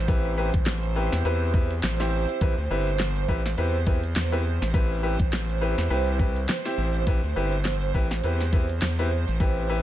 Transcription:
Already playing: analog synth bass A1, analog synth pad C5
0.08 grand piano C4 E4 G4 B4, kick, closed hi-hat
0.37 grand piano C4 E4 G4 B4
0.54 analog synth bass A1, kick, closed hi-hat
0.66 snare, closed hi-hat
0.83 closed hi-hat
0.96 grand piano C4 E4 G4 B4
1.12 analog synth bass E2, snare, closed hi-hat
1.25 analog synth bass E2, grand piano C4 E4 G4 B4, closed hi-hat
1.54 grand piano C4 E4 G4 B4, kick
1.71 closed hi-hat
1.83 analog synth bass A1, snare, closed hi-hat
2.00 grand piano C4 E4 G4 C5, snare, closed hi-hat
2.29 closed hi-hat
2.41 analog synth bass A1, grand piano C4 E4 G4 B4, kick, closed hi-hat
2.58 analog synth bass D2
2.70 analog synth bass G1, grand piano C4 E4 G4 B4
2.87 closed hi-hat
3.00 snare, closed hi-hat
3.16 closed hi-hat
3.28 analog synth bass A1, grand piano C4 E4 G4 B4, kick
3.46 snare, closed hi-hat
3.58 analog synth bass E2, grand piano C4 E4 G4 B4, closed hi-hat
3.87 grand piano C4 E4 G4 B4, kick
4.04 closed hi-hat
4.16 analog synth bass E2, snare, closed hi-hat
4.32 grand piano C4 E4 G4 B4, closed hi-hat
4.62 analog synth bass A1, snare, closed hi-hat
4.74 grand piano C4 E4 G4 B4, kick, closed hi-hat
5.03 grand piano C4 E4 G4 B4
5.19 analog synth bass A1, kick, closed hi-hat
5.33 snare, closed hi-hat
5.49 closed hi-hat
5.61 grand piano C4 E4 G4 B4
5.78 analog synth bass E2, snare, closed hi-hat
5.90 analog synth bass C2, grand piano C4 E4 G4 B4
6.07 closed hi-hat
6.19 grand piano C4 E4 G4 B4, kick
6.36 closed hi-hat
6.49 snare, closed hi-hat
6.65 grand piano C4 E4 G4 C5, snare, closed hi-hat
6.78 analog synth bass A1
6.94 closed hi-hat
7.07 analog synth bass A1, grand piano C4 E4 G4 B4, kick, closed hi-hat
7.23 analog synth bass D2
7.36 analog synth bass G1, grand piano C4 E4 G4 B4
7.53 closed hi-hat
7.65 snare, closed hi-hat
7.82 closed hi-hat
7.94 analog synth bass A1, grand piano C4 E4 G4 B4, kick
8.11 snare, closed hi-hat
8.24 analog synth bass E2, grand piano C4 E4 G4 B4, closed hi-hat
8.41 snare
8.53 grand piano C4 E4 G4 B4, kick
8.69 closed hi-hat
8.82 analog synth bass E2, snare, closed hi-hat
8.99 grand piano C4 E4 G4 B4, closed hi-hat
9.28 analog synth bass A1, closed hi-hat
9.40 grand piano C4 E4 G4 B4, kick, closed hi-hat
9.69 grand piano C4 E4 G4 B4

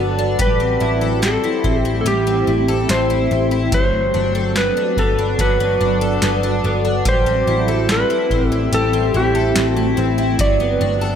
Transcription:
Already playing: picked electric bass G1, ambient pad F#3 F#4 A4 D5, twelve-string acoustic guitar F#3 B3 D4 A4
0.19 twelve-string acoustic guitar D4
0.39 picked electric bass A1, twelve-string acoustic guitar G3, ambient pad A3 C4 G4, electric slide guitar B4, kick, closed hi-hat
0.60 twelve-string acoustic guitar C4
0.80 picked electric bass A1, twelve-string acoustic guitar E4
1.01 twelve-string acoustic guitar A4
1.22 twelve-string acoustic guitar C4, electric slide guitar A4, snare, closed hi-hat
1.44 twelve-string acoustic guitar E4
1.64 picked electric bass A1, twelve-string acoustic guitar C4, kick
1.81 twelve-string acoustic guitar E4, electric slide guitar G4
2.01 electric slide guitar A4
2.05 picked electric bass A1, twelve-string acoustic guitar G3, electric slide guitar G4, closed hi-hat
2.27 twelve-string acoustic guitar C4
2.47 picked electric bass A1, twelve-string acoustic guitar E4
2.68 twelve-string acoustic guitar A4
2.89 picked electric bass A1, twelve-string acoustic guitar C4, electric slide guitar C5, snare, closed hi-hat
3.10 twelve-string acoustic guitar E4
3.31 picked electric bass A1, twelve-string acoustic guitar C4
3.51 twelve-string acoustic guitar E4
3.72 picked electric bass G1, twelve-string acoustic guitar F#3, ambient pad F#3 F#4 A4 D5, electric slide guitar C5, kick, closed hi-hat
4.14 picked electric bass G1, twelve-string acoustic guitar D4
4.35 twelve-string acoustic guitar A4
4.56 twelve-string acoustic guitar B3, electric slide guitar B4, snare, closed hi-hat
4.77 twelve-string acoustic guitar D4
4.97 picked electric bass G1, twelve-string acoustic guitar B3, electric slide guitar A4, kick
5.19 twelve-string acoustic guitar D4
5.39 picked electric bass G1, twelve-string acoustic guitar F#3, electric slide guitar B4, kick, closed hi-hat
5.60 twelve-string acoustic guitar B3
5.81 picked electric bass G1, twelve-string acoustic guitar D4
6.01 twelve-string acoustic guitar A4
6.22 picked electric bass G1, twelve-string acoustic guitar B3, snare, closed hi-hat
6.43 twelve-string acoustic guitar D4
6.64 picked electric bass G1, twelve-string acoustic guitar B3
6.85 twelve-string acoustic guitar D4
7.05 picked electric bass A1, twelve-string acoustic guitar G3, ambient pad A3 C4 G4, kick, closed hi-hat
7.09 electric slide guitar C5
7.26 twelve-string acoustic guitar C4
7.47 picked electric bass A1, twelve-string acoustic guitar E4
7.68 twelve-string acoustic guitar A4
7.89 twelve-string acoustic guitar C4, electric slide guitar B4, snare, closed hi-hat
8.10 twelve-string acoustic guitar E4
8.31 picked electric bass A1, twelve-string acoustic guitar C4, kick
8.48 twelve-string acoustic guitar E4, electric slide guitar A4
8.72 picked electric bass A1, twelve-string acoustic guitar G3, electric slide guitar A4, closed hi-hat
8.93 twelve-string acoustic guitar C4
9.14 picked electric bass A1, twelve-string acoustic guitar E4, electric slide guitar G4
9.35 twelve-string acoustic guitar A4
9.56 picked electric bass A1, twelve-string acoustic guitar C4, snare, closed hi-hat
9.70 electric slide guitar F#4
9.77 twelve-string acoustic guitar E4
9.97 picked electric bass A1, twelve-string acoustic guitar C4
10.18 twelve-string acoustic guitar E4
10.38 picked electric bass G1, ambient pad F#3 F#4 A4 D5, twelve-string acoustic guitar F#3, electric slide guitar D5, kick, closed hi-hat
10.60 twelve-string acoustic guitar B3
10.81 picked electric bass G1, twelve-string acoustic guitar D4
11.01 twelve-string acoustic guitar A4

